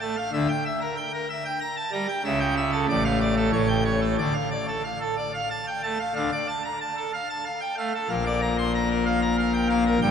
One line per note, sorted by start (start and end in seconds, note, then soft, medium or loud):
0.01 0.15 A3 medium
0.01 0.15 A5 medium
0.17 0.31 F5 medium
0.33 0.47 D2 medium
0.33 0.47 D3 medium
0.33 0.48 E5 medium
0.49 0.64 G5 medium
0.65 0.80 E5 medium
0.81 0.95 A#4 medium
0.97 1.11 G5 medium
1.14 1.28 A#4 medium
1.29 1.43 E5 medium
1.45 1.59 G5 medium
1.61 1.75 A#5 loud
1.77 1.90 A5 medium
1.92 2.07 G3 medium
1.92 2.07 A#5 medium
2.09 2.22 G5 medium
2.24 2.86 C#2 medium
2.24 2.86 C#3 medium
2.24 2.39 E5 medium
2.40 2.55 G5 medium
2.57 2.71 E5 medium
2.72 2.86 A4 medium
2.89 3.51 A1 medium
2.89 3.51 A2 medium
2.89 3.03 D5 medium
3.05 3.19 F5 loud
3.21 3.35 D5 medium
3.37 3.50 A4 medium
3.53 4.16 A1 medium
3.53 4.16 A2 medium
3.53 3.67 C#5 medium
3.69 3.83 G5 medium
3.85 4.00 C#5 medium
4.01 4.15 A4 medium
4.18 4.32 D2 medium
4.18 4.32 D3 medium
4.18 4.33 D5 medium
4.34 4.49 F5 medium
4.51 4.66 D5 medium
4.68 4.82 A4 medium
4.84 4.99 F5 medium
5.01 5.15 A4 medium
5.17 5.32 D5 medium
5.34 5.49 F5 medium
5.50 5.65 A5 medium
5.68 5.81 G5 medium
5.83 5.98 A3 medium
5.83 5.98 A5 medium
6.00 6.14 F5 medium
6.15 6.30 D2 medium
6.15 6.29 D3 medium
6.15 6.30 F5 medium
6.32 6.47 D5 medium
6.48 6.63 A5 medium
6.65 6.79 A#5 medium
6.81 6.95 A5 medium
6.97 7.12 A4 medium
7.14 7.28 F5 medium
7.30 7.44 A5 medium
7.46 7.60 F5 medium
7.61 7.75 G5 medium
7.78 7.92 A3 medium
7.78 7.92 F5 medium
7.94 8.08 A4 medium
8.09 9.97 A#1 medium
8.09 9.97 A#2 medium
8.09 8.24 F5 medium
8.26 8.40 D5 medium
8.42 8.56 A#5 medium
8.58 8.72 C6 medium
8.75 8.89 A#5 medium
8.90 9.04 A#4 medium
9.06 9.20 F5 medium
9.22 9.36 A#5 medium
9.39 9.53 F5 medium
9.54 9.67 G5 medium
9.69 9.84 A#3 medium
9.69 9.84 F5 medium
9.87 10.00 A#4 medium
10.02 10.11 G1 medium
10.02 10.11 G2 medium
10.02 10.11 G5 medium